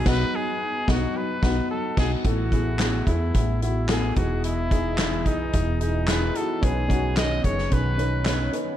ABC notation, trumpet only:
X:1
M:4/4
L:1/8
Q:1/4=110
K:Bmix
V:1 name="Trumpet"
B G2 F B2 A G | F3 E2 E G F | E3 D2 D B A | G2 d c B2 B z |]